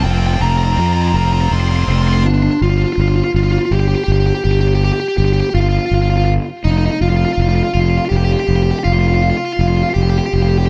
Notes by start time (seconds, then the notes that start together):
0.04 F1 C4 F4 G5
0.11 C4 F4 G5
0.19 C4 F4 G5
0.26 C4 F4 G5
0.34 C4 F4 G5
0.41 F1 C4 F4 A#5
0.49 C4 F4 A#5
0.57 C4 F4 A#5
0.64 C4 F4 A#5
0.71 C4 F4 A#5
0.77 F2 C4 F4 A#5
0.86 C4 F4 A#5
0.93 C4 F4 A#5
1.02 C4 F4 A#5
1.08 C4 A#5
1.12 F1 F4
1.17 C4 F4 A#5
1.25 C4 F4 A#5
1.33 C4 F4 A#5
1.40 C4 F4 A#5
1.48 F1 C4 F4
1.53 C4 C6
1.57 F4 C6
1.64 C4 F4
1.68 C4 F4 C6
1.76 C4 F4 C6
1.83 C4 C6
1.88 F1 F4 C6
1.94 C4 F4 C6
2.02 C4 F4
2.07 C4 F4 C6
2.13 C4 C6
2.18 F4
2.25 G1 D4
2.34 D4
2.43 D4
2.51 D4
2.61 G1 F4
2.70 F4
2.77 F4
2.84 F4
2.93 F4
2.98 G1 F4
3.08 F4
3.16 F4
3.24 F4
3.34 G1 F4
3.44 F4
3.52 F4
3.59 F4
3.65 F4
3.71 G1 G4
3.80 G4
3.88 G4
3.95 G4
4.04 G4
4.08 G1
4.12 G4
4.20 G4
4.26 G4
4.35 G4
4.44 G1 G4
4.51 G4
4.60 G4
4.68 G4
4.75 G4
4.84 G4
4.93 G4
5.00 G4
5.08 G4
5.17 G1 G4
5.25 G4
5.33 G4
5.40 G4
5.50 G4
5.54 G1 F4
5.61 F4
5.69 F4
5.78 F4
5.86 F4
5.91 G1 F4
6.02 F4
6.10 F4
6.17 F4
6.25 F4
6.64 F1 D#4
6.71 D#4
6.78 D#4
6.86 D#4
6.92 D#4
7.01 F1 F4
7.09 F4
7.16 F4
7.25 F4
7.33 F4
7.37 F1 F4
7.49 F4
7.55 F4
7.63 F4
7.74 F1 F4
7.81 F4
7.90 F4
7.97 F4
8.06 F4 G4
8.11 F1
8.16 G4
8.24 G4
8.33 G4
8.40 G4
8.48 F1 G4
8.56 G4
8.63 G4
8.71 G4
8.79 G4
8.84 F1 F4
8.93 F4
8.99 F4
9.08 F4
9.14 F4
9.23 F4
9.30 F4
9.37 F4
9.45 F4
9.53 F4
9.59 F1 F4
9.68 F4
9.77 F4
9.83 F4
9.90 F4
9.94 F1 G4
10.03 G4
10.10 G4
10.18 G4
10.26 G4
10.33 F1 G4
10.42 G4
10.49 G4
10.58 G4
10.66 G4